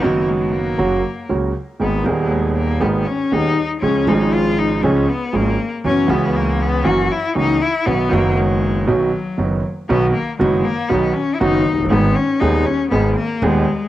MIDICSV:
0, 0, Header, 1, 4, 480
1, 0, Start_track
1, 0, Key_signature, 5, "major"
1, 0, Tempo, 505051
1, 1715, Time_signature, 4, 2, 24, 8
1, 13193, End_track
2, 0, Start_track
2, 0, Title_t, "Cello"
2, 0, Program_c, 0, 42
2, 21, Note_on_c, 0, 58, 76
2, 271, Note_on_c, 0, 56, 72
2, 285, Note_off_c, 0, 58, 0
2, 504, Note_on_c, 0, 58, 82
2, 518, Note_off_c, 0, 56, 0
2, 1229, Note_off_c, 0, 58, 0
2, 1725, Note_on_c, 0, 59, 78
2, 1960, Note_on_c, 0, 58, 72
2, 1974, Note_off_c, 0, 59, 0
2, 2199, Note_on_c, 0, 56, 70
2, 2213, Note_off_c, 0, 58, 0
2, 2437, Note_off_c, 0, 56, 0
2, 2448, Note_on_c, 0, 58, 79
2, 2674, Note_on_c, 0, 59, 73
2, 2688, Note_off_c, 0, 58, 0
2, 2918, Note_on_c, 0, 61, 80
2, 2932, Note_off_c, 0, 59, 0
2, 3163, Note_on_c, 0, 63, 94
2, 3178, Note_off_c, 0, 61, 0
2, 3520, Note_off_c, 0, 63, 0
2, 3620, Note_on_c, 0, 61, 90
2, 3882, Note_on_c, 0, 63, 80
2, 3896, Note_off_c, 0, 61, 0
2, 4120, Note_on_c, 0, 65, 89
2, 4134, Note_off_c, 0, 63, 0
2, 4359, Note_on_c, 0, 63, 83
2, 4373, Note_off_c, 0, 65, 0
2, 4593, Note_on_c, 0, 61, 77
2, 4608, Note_off_c, 0, 63, 0
2, 4832, Note_on_c, 0, 59, 85
2, 4846, Note_off_c, 0, 61, 0
2, 5085, Note_on_c, 0, 58, 94
2, 5099, Note_off_c, 0, 59, 0
2, 5439, Note_off_c, 0, 58, 0
2, 5563, Note_on_c, 0, 61, 101
2, 5797, Note_on_c, 0, 59, 88
2, 5811, Note_off_c, 0, 61, 0
2, 6045, Note_on_c, 0, 58, 84
2, 6059, Note_off_c, 0, 59, 0
2, 6293, Note_on_c, 0, 59, 94
2, 6308, Note_off_c, 0, 58, 0
2, 6520, Note_on_c, 0, 66, 82
2, 6534, Note_off_c, 0, 59, 0
2, 6764, Note_on_c, 0, 64, 93
2, 6779, Note_off_c, 0, 66, 0
2, 6993, Note_off_c, 0, 64, 0
2, 6999, Note_on_c, 0, 63, 99
2, 7242, Note_on_c, 0, 64, 93
2, 7256, Note_off_c, 0, 63, 0
2, 7486, Note_on_c, 0, 59, 92
2, 7500, Note_off_c, 0, 64, 0
2, 7730, Note_on_c, 0, 58, 89
2, 7744, Note_off_c, 0, 59, 0
2, 7970, Note_on_c, 0, 56, 86
2, 7984, Note_off_c, 0, 58, 0
2, 8436, Note_on_c, 0, 54, 73
2, 8450, Note_off_c, 0, 56, 0
2, 9158, Note_off_c, 0, 54, 0
2, 9402, Note_on_c, 0, 59, 90
2, 9622, Note_off_c, 0, 59, 0
2, 9627, Note_on_c, 0, 58, 81
2, 9857, Note_off_c, 0, 58, 0
2, 9870, Note_on_c, 0, 56, 81
2, 10118, Note_on_c, 0, 58, 94
2, 10132, Note_off_c, 0, 56, 0
2, 10344, Note_on_c, 0, 59, 81
2, 10358, Note_off_c, 0, 58, 0
2, 10585, Note_on_c, 0, 61, 88
2, 10600, Note_off_c, 0, 59, 0
2, 10786, Note_on_c, 0, 64, 64
2, 10800, Note_off_c, 0, 61, 0
2, 10825, Note_on_c, 0, 63, 97
2, 10839, Note_off_c, 0, 64, 0
2, 11192, Note_off_c, 0, 63, 0
2, 11310, Note_on_c, 0, 59, 93
2, 11547, Note_on_c, 0, 61, 93
2, 11561, Note_off_c, 0, 59, 0
2, 11784, Note_on_c, 0, 63, 92
2, 11798, Note_off_c, 0, 61, 0
2, 12027, Note_on_c, 0, 61, 93
2, 12041, Note_off_c, 0, 63, 0
2, 12254, Note_off_c, 0, 61, 0
2, 12260, Note_on_c, 0, 59, 76
2, 12491, Note_off_c, 0, 59, 0
2, 12506, Note_on_c, 0, 58, 87
2, 12757, Note_on_c, 0, 56, 97
2, 12772, Note_off_c, 0, 58, 0
2, 13118, Note_off_c, 0, 56, 0
2, 13193, End_track
3, 0, Start_track
3, 0, Title_t, "Grand piano"
3, 0, Program_c, 1, 0
3, 3, Note_on_c, 1, 51, 72
3, 18, Note_on_c, 1, 54, 78
3, 29, Note_on_c, 1, 42, 81
3, 31, Note_on_c, 1, 59, 67
3, 42, Note_on_c, 1, 66, 74
3, 702, Note_off_c, 1, 51, 0
3, 713, Note_off_c, 1, 54, 0
3, 715, Note_off_c, 1, 42, 0
3, 716, Note_off_c, 1, 59, 0
3, 721, Note_off_c, 1, 66, 0
3, 745, Note_on_c, 1, 54, 71
3, 746, Note_on_c, 1, 49, 62
3, 746, Note_on_c, 1, 58, 58
3, 751, Note_on_c, 1, 66, 70
3, 754, Note_on_c, 1, 42, 72
3, 951, Note_off_c, 1, 58, 0
3, 952, Note_off_c, 1, 49, 0
3, 953, Note_off_c, 1, 54, 0
3, 954, Note_off_c, 1, 66, 0
3, 955, Note_off_c, 1, 42, 0
3, 1229, Note_on_c, 1, 49, 50
3, 1230, Note_on_c, 1, 37, 52
3, 1232, Note_on_c, 1, 58, 40
3, 1233, Note_on_c, 1, 54, 43
3, 1235, Note_on_c, 1, 66, 52
3, 1433, Note_off_c, 1, 49, 0
3, 1434, Note_off_c, 1, 37, 0
3, 1435, Note_off_c, 1, 54, 0
3, 1435, Note_off_c, 1, 58, 0
3, 1436, Note_off_c, 1, 66, 0
3, 1706, Note_on_c, 1, 51, 50
3, 1707, Note_on_c, 1, 58, 46
3, 1710, Note_on_c, 1, 32, 53
3, 1713, Note_on_c, 1, 44, 59
3, 1716, Note_on_c, 1, 68, 53
3, 1718, Note_on_c, 1, 59, 42
3, 1912, Note_off_c, 1, 51, 0
3, 1913, Note_off_c, 1, 58, 0
3, 1914, Note_off_c, 1, 32, 0
3, 1916, Note_off_c, 1, 44, 0
3, 1917, Note_off_c, 1, 68, 0
3, 1918, Note_off_c, 1, 59, 0
3, 1937, Note_on_c, 1, 51, 64
3, 1953, Note_on_c, 1, 58, 56
3, 1955, Note_on_c, 1, 27, 80
3, 1955, Note_on_c, 1, 39, 72
3, 1960, Note_on_c, 1, 59, 64
3, 1974, Note_on_c, 1, 68, 79
3, 2631, Note_off_c, 1, 51, 0
3, 2639, Note_off_c, 1, 58, 0
3, 2640, Note_off_c, 1, 27, 0
3, 2640, Note_off_c, 1, 39, 0
3, 2642, Note_off_c, 1, 59, 0
3, 2649, Note_off_c, 1, 68, 0
3, 2667, Note_on_c, 1, 51, 65
3, 2667, Note_on_c, 1, 58, 60
3, 2668, Note_on_c, 1, 44, 71
3, 2669, Note_on_c, 1, 32, 75
3, 2669, Note_on_c, 1, 68, 73
3, 2674, Note_on_c, 1, 59, 62
3, 2873, Note_off_c, 1, 58, 0
3, 2874, Note_off_c, 1, 32, 0
3, 2874, Note_off_c, 1, 44, 0
3, 2874, Note_off_c, 1, 51, 0
3, 2874, Note_off_c, 1, 68, 0
3, 2877, Note_off_c, 1, 59, 0
3, 3150, Note_on_c, 1, 51, 46
3, 3154, Note_on_c, 1, 39, 55
3, 3156, Note_on_c, 1, 27, 58
3, 3157, Note_on_c, 1, 59, 44
3, 3162, Note_on_c, 1, 58, 43
3, 3162, Note_on_c, 1, 68, 55
3, 3355, Note_off_c, 1, 51, 0
3, 3357, Note_off_c, 1, 39, 0
3, 3358, Note_off_c, 1, 27, 0
3, 3359, Note_off_c, 1, 59, 0
3, 3361, Note_off_c, 1, 58, 0
3, 3361, Note_off_c, 1, 68, 0
3, 3630, Note_on_c, 1, 53, 47
3, 3635, Note_on_c, 1, 61, 43
3, 3636, Note_on_c, 1, 37, 62
3, 3640, Note_on_c, 1, 68, 57
3, 3641, Note_on_c, 1, 49, 54
3, 3641, Note_on_c, 1, 56, 42
3, 3835, Note_off_c, 1, 53, 0
3, 3838, Note_off_c, 1, 37, 0
3, 3838, Note_off_c, 1, 61, 0
3, 3840, Note_off_c, 1, 56, 0
3, 3840, Note_off_c, 1, 68, 0
3, 3841, Note_off_c, 1, 49, 0
3, 3864, Note_on_c, 1, 53, 71
3, 3877, Note_on_c, 1, 56, 62
3, 3880, Note_on_c, 1, 32, 82
3, 3880, Note_on_c, 1, 44, 79
3, 3889, Note_on_c, 1, 61, 59
3, 3903, Note_on_c, 1, 68, 81
3, 4553, Note_off_c, 1, 53, 0
3, 4559, Note_off_c, 1, 56, 0
3, 4560, Note_off_c, 1, 32, 0
3, 4560, Note_off_c, 1, 44, 0
3, 4565, Note_off_c, 1, 61, 0
3, 4572, Note_off_c, 1, 68, 0
3, 4594, Note_on_c, 1, 37, 84
3, 4595, Note_on_c, 1, 56, 65
3, 4596, Note_on_c, 1, 49, 79
3, 4596, Note_on_c, 1, 53, 63
3, 4598, Note_on_c, 1, 61, 59
3, 4601, Note_on_c, 1, 68, 71
3, 4795, Note_off_c, 1, 37, 0
3, 4796, Note_off_c, 1, 49, 0
3, 4796, Note_off_c, 1, 53, 0
3, 4796, Note_off_c, 1, 56, 0
3, 4797, Note_off_c, 1, 61, 0
3, 4799, Note_off_c, 1, 68, 0
3, 5065, Note_on_c, 1, 32, 57
3, 5065, Note_on_c, 1, 44, 57
3, 5066, Note_on_c, 1, 53, 49
3, 5066, Note_on_c, 1, 68, 53
3, 5067, Note_on_c, 1, 56, 45
3, 5069, Note_on_c, 1, 61, 47
3, 5271, Note_off_c, 1, 32, 0
3, 5271, Note_off_c, 1, 44, 0
3, 5271, Note_off_c, 1, 53, 0
3, 5271, Note_off_c, 1, 56, 0
3, 5271, Note_off_c, 1, 68, 0
3, 5273, Note_off_c, 1, 61, 0
3, 5555, Note_on_c, 1, 52, 48
3, 5556, Note_on_c, 1, 54, 52
3, 5557, Note_on_c, 1, 42, 57
3, 5558, Note_on_c, 1, 59, 46
3, 5561, Note_on_c, 1, 61, 45
3, 5562, Note_on_c, 1, 66, 50
3, 5755, Note_off_c, 1, 52, 0
3, 5756, Note_off_c, 1, 42, 0
3, 5756, Note_off_c, 1, 54, 0
3, 5757, Note_off_c, 1, 59, 0
3, 5758, Note_off_c, 1, 61, 0
3, 5759, Note_off_c, 1, 66, 0
3, 5769, Note_on_c, 1, 52, 70
3, 5779, Note_on_c, 1, 59, 63
3, 5783, Note_on_c, 1, 37, 85
3, 5788, Note_on_c, 1, 49, 86
3, 5791, Note_on_c, 1, 61, 67
3, 5803, Note_on_c, 1, 66, 74
3, 6464, Note_off_c, 1, 52, 0
3, 6469, Note_off_c, 1, 59, 0
3, 6471, Note_off_c, 1, 37, 0
3, 6474, Note_off_c, 1, 49, 0
3, 6475, Note_off_c, 1, 61, 0
3, 6481, Note_off_c, 1, 66, 0
3, 6505, Note_on_c, 1, 42, 77
3, 6505, Note_on_c, 1, 66, 71
3, 6506, Note_on_c, 1, 52, 73
3, 6507, Note_on_c, 1, 58, 63
3, 6509, Note_on_c, 1, 54, 80
3, 6512, Note_on_c, 1, 61, 61
3, 6710, Note_off_c, 1, 42, 0
3, 6710, Note_off_c, 1, 52, 0
3, 6710, Note_off_c, 1, 66, 0
3, 6711, Note_off_c, 1, 58, 0
3, 6712, Note_off_c, 1, 54, 0
3, 6713, Note_off_c, 1, 61, 0
3, 6983, Note_on_c, 1, 58, 46
3, 6985, Note_on_c, 1, 52, 49
3, 6986, Note_on_c, 1, 49, 52
3, 6988, Note_on_c, 1, 37, 60
3, 6990, Note_on_c, 1, 66, 51
3, 6991, Note_on_c, 1, 61, 47
3, 7189, Note_off_c, 1, 58, 0
3, 7190, Note_off_c, 1, 52, 0
3, 7191, Note_off_c, 1, 49, 0
3, 7192, Note_off_c, 1, 37, 0
3, 7193, Note_off_c, 1, 61, 0
3, 7193, Note_off_c, 1, 66, 0
3, 7470, Note_on_c, 1, 51, 48
3, 7471, Note_on_c, 1, 54, 45
3, 7472, Note_on_c, 1, 35, 53
3, 7473, Note_on_c, 1, 59, 45
3, 7477, Note_on_c, 1, 66, 52
3, 7478, Note_on_c, 1, 47, 59
3, 7672, Note_off_c, 1, 51, 0
3, 7673, Note_off_c, 1, 54, 0
3, 7674, Note_off_c, 1, 35, 0
3, 7674, Note_off_c, 1, 59, 0
3, 7676, Note_off_c, 1, 47, 0
3, 7676, Note_off_c, 1, 66, 0
3, 7690, Note_on_c, 1, 51, 70
3, 7702, Note_on_c, 1, 54, 62
3, 7709, Note_on_c, 1, 42, 79
3, 7713, Note_on_c, 1, 30, 83
3, 7714, Note_on_c, 1, 59, 64
3, 7730, Note_on_c, 1, 66, 81
3, 8386, Note_off_c, 1, 51, 0
3, 8392, Note_off_c, 1, 54, 0
3, 8395, Note_off_c, 1, 42, 0
3, 8397, Note_off_c, 1, 30, 0
3, 8397, Note_off_c, 1, 59, 0
3, 8406, Note_off_c, 1, 66, 0
3, 8427, Note_on_c, 1, 51, 65
3, 8434, Note_on_c, 1, 47, 72
3, 8434, Note_on_c, 1, 54, 60
3, 8434, Note_on_c, 1, 66, 69
3, 8435, Note_on_c, 1, 35, 74
3, 8437, Note_on_c, 1, 59, 60
3, 8632, Note_off_c, 1, 51, 0
3, 8635, Note_off_c, 1, 47, 0
3, 8636, Note_off_c, 1, 35, 0
3, 8636, Note_off_c, 1, 54, 0
3, 8636, Note_off_c, 1, 66, 0
3, 8637, Note_off_c, 1, 59, 0
3, 8912, Note_on_c, 1, 51, 48
3, 8912, Note_on_c, 1, 54, 43
3, 8913, Note_on_c, 1, 59, 45
3, 8914, Note_on_c, 1, 30, 53
3, 8920, Note_on_c, 1, 42, 61
3, 8923, Note_on_c, 1, 66, 49
3, 9116, Note_off_c, 1, 51, 0
3, 9116, Note_off_c, 1, 54, 0
3, 9117, Note_off_c, 1, 59, 0
3, 9118, Note_off_c, 1, 30, 0
3, 9121, Note_off_c, 1, 42, 0
3, 9122, Note_off_c, 1, 66, 0
3, 9400, Note_on_c, 1, 51, 69
3, 9404, Note_on_c, 1, 54, 69
3, 9404, Note_on_c, 1, 59, 62
3, 9406, Note_on_c, 1, 35, 85
3, 9408, Note_on_c, 1, 47, 77
3, 9412, Note_on_c, 1, 66, 71
3, 9602, Note_off_c, 1, 51, 0
3, 9603, Note_off_c, 1, 59, 0
3, 9604, Note_off_c, 1, 35, 0
3, 9604, Note_off_c, 1, 54, 0
3, 9606, Note_off_c, 1, 47, 0
3, 9607, Note_off_c, 1, 66, 0
3, 9875, Note_on_c, 1, 30, 75
3, 9880, Note_on_c, 1, 42, 76
3, 9880, Note_on_c, 1, 51, 65
3, 9880, Note_on_c, 1, 54, 63
3, 9881, Note_on_c, 1, 59, 64
3, 9885, Note_on_c, 1, 66, 73
3, 10079, Note_off_c, 1, 30, 0
3, 10082, Note_off_c, 1, 42, 0
3, 10082, Note_off_c, 1, 51, 0
3, 10082, Note_off_c, 1, 54, 0
3, 10082, Note_off_c, 1, 59, 0
3, 10084, Note_off_c, 1, 66, 0
3, 10354, Note_on_c, 1, 35, 68
3, 10356, Note_on_c, 1, 51, 67
3, 10357, Note_on_c, 1, 54, 59
3, 10358, Note_on_c, 1, 47, 71
3, 10358, Note_on_c, 1, 59, 59
3, 10363, Note_on_c, 1, 66, 68
3, 10559, Note_off_c, 1, 35, 0
3, 10560, Note_off_c, 1, 51, 0
3, 10560, Note_off_c, 1, 54, 0
3, 10561, Note_off_c, 1, 47, 0
3, 10561, Note_off_c, 1, 59, 0
3, 10563, Note_off_c, 1, 66, 0
3, 10840, Note_on_c, 1, 30, 82
3, 10840, Note_on_c, 1, 42, 83
3, 10840, Note_on_c, 1, 54, 64
3, 10843, Note_on_c, 1, 59, 59
3, 10843, Note_on_c, 1, 66, 79
3, 10844, Note_on_c, 1, 51, 74
3, 11041, Note_off_c, 1, 30, 0
3, 11042, Note_off_c, 1, 42, 0
3, 11042, Note_off_c, 1, 54, 0
3, 11043, Note_off_c, 1, 59, 0
3, 11043, Note_off_c, 1, 66, 0
3, 11044, Note_off_c, 1, 51, 0
3, 11145, Note_on_c, 1, 29, 47
3, 11197, Note_on_c, 1, 30, 55
3, 11202, Note_off_c, 1, 29, 0
3, 11251, Note_on_c, 1, 31, 70
3, 11258, Note_off_c, 1, 30, 0
3, 11310, Note_on_c, 1, 56, 65
3, 11312, Note_on_c, 1, 44, 93
3, 11312, Note_on_c, 1, 51, 67
3, 11313, Note_on_c, 1, 32, 84
3, 11315, Note_off_c, 1, 31, 0
3, 11317, Note_on_c, 1, 59, 68
3, 11318, Note_on_c, 1, 68, 83
3, 11516, Note_off_c, 1, 56, 0
3, 11517, Note_off_c, 1, 44, 0
3, 11517, Note_off_c, 1, 51, 0
3, 11518, Note_off_c, 1, 32, 0
3, 11520, Note_off_c, 1, 59, 0
3, 11520, Note_off_c, 1, 68, 0
3, 11788, Note_on_c, 1, 27, 78
3, 11789, Note_on_c, 1, 51, 66
3, 11794, Note_on_c, 1, 56, 63
3, 11794, Note_on_c, 1, 59, 66
3, 11795, Note_on_c, 1, 39, 84
3, 11801, Note_on_c, 1, 68, 84
3, 11995, Note_off_c, 1, 27, 0
3, 11995, Note_off_c, 1, 51, 0
3, 11998, Note_off_c, 1, 39, 0
3, 11998, Note_off_c, 1, 56, 0
3, 11998, Note_off_c, 1, 59, 0
3, 12001, Note_off_c, 1, 68, 0
3, 12273, Note_on_c, 1, 32, 81
3, 12273, Note_on_c, 1, 51, 64
3, 12279, Note_on_c, 1, 59, 65
3, 12279, Note_on_c, 1, 68, 77
3, 12280, Note_on_c, 1, 44, 76
3, 12282, Note_on_c, 1, 56, 59
3, 12477, Note_off_c, 1, 32, 0
3, 12477, Note_off_c, 1, 51, 0
3, 12480, Note_off_c, 1, 59, 0
3, 12480, Note_off_c, 1, 68, 0
3, 12481, Note_off_c, 1, 44, 0
3, 12481, Note_off_c, 1, 56, 0
3, 12755, Note_on_c, 1, 51, 71
3, 12760, Note_on_c, 1, 56, 69
3, 12761, Note_on_c, 1, 27, 83
3, 12761, Note_on_c, 1, 39, 82
3, 12763, Note_on_c, 1, 68, 81
3, 12764, Note_on_c, 1, 59, 72
3, 12958, Note_off_c, 1, 51, 0
3, 12960, Note_off_c, 1, 56, 0
3, 12961, Note_off_c, 1, 27, 0
3, 12961, Note_off_c, 1, 39, 0
3, 12962, Note_off_c, 1, 59, 0
3, 12962, Note_off_c, 1, 68, 0
3, 13193, End_track
4, 0, Start_track
4, 0, Title_t, "Upright bass"
4, 0, Program_c, 2, 32
4, 42, Note_on_c, 2, 30, 77
4, 722, Note_off_c, 2, 30, 0
4, 754, Note_on_c, 2, 30, 79
4, 956, Note_off_c, 2, 30, 0
4, 1239, Note_on_c, 2, 37, 48
4, 1438, Note_off_c, 2, 37, 0
4, 1722, Note_on_c, 2, 32, 53
4, 1920, Note_off_c, 2, 32, 0
4, 1954, Note_on_c, 2, 39, 86
4, 2639, Note_off_c, 2, 39, 0
4, 2676, Note_on_c, 2, 32, 81
4, 2878, Note_off_c, 2, 32, 0
4, 3158, Note_on_c, 2, 39, 59
4, 3359, Note_off_c, 2, 39, 0
4, 3635, Note_on_c, 2, 37, 59
4, 3837, Note_off_c, 2, 37, 0
4, 3870, Note_on_c, 2, 32, 85
4, 4555, Note_off_c, 2, 32, 0
4, 4587, Note_on_c, 2, 37, 77
4, 4792, Note_off_c, 2, 37, 0
4, 5069, Note_on_c, 2, 32, 57
4, 5272, Note_off_c, 2, 32, 0
4, 5553, Note_on_c, 2, 30, 56
4, 5754, Note_off_c, 2, 30, 0
4, 5792, Note_on_c, 2, 37, 88
4, 6476, Note_off_c, 2, 37, 0
4, 6513, Note_on_c, 2, 30, 77
4, 6714, Note_off_c, 2, 30, 0
4, 6996, Note_on_c, 2, 37, 51
4, 7195, Note_off_c, 2, 37, 0
4, 7479, Note_on_c, 2, 35, 59
4, 7677, Note_off_c, 2, 35, 0
4, 7726, Note_on_c, 2, 30, 86
4, 8403, Note_off_c, 2, 30, 0
4, 8447, Note_on_c, 2, 35, 69
4, 8642, Note_off_c, 2, 35, 0
4, 8924, Note_on_c, 2, 30, 54
4, 9122, Note_off_c, 2, 30, 0
4, 9411, Note_on_c, 2, 35, 87
4, 9607, Note_off_c, 2, 35, 0
4, 9892, Note_on_c, 2, 30, 96
4, 10088, Note_off_c, 2, 30, 0
4, 10372, Note_on_c, 2, 35, 83
4, 10568, Note_off_c, 2, 35, 0
4, 10846, Note_on_c, 2, 30, 94
4, 11044, Note_off_c, 2, 30, 0
4, 11150, Note_on_c, 2, 29, 48
4, 11205, Note_off_c, 2, 29, 0
4, 11211, Note_on_c, 2, 30, 61
4, 11258, Note_off_c, 2, 30, 0
4, 11264, Note_on_c, 2, 31, 70
4, 11322, Note_off_c, 2, 31, 0
4, 11331, Note_on_c, 2, 32, 94
4, 11526, Note_off_c, 2, 32, 0
4, 11799, Note_on_c, 2, 39, 92
4, 12000, Note_off_c, 2, 39, 0
4, 12275, Note_on_c, 2, 32, 77
4, 12478, Note_off_c, 2, 32, 0
4, 12754, Note_on_c, 2, 39, 97
4, 12957, Note_off_c, 2, 39, 0
4, 13193, End_track
0, 0, End_of_file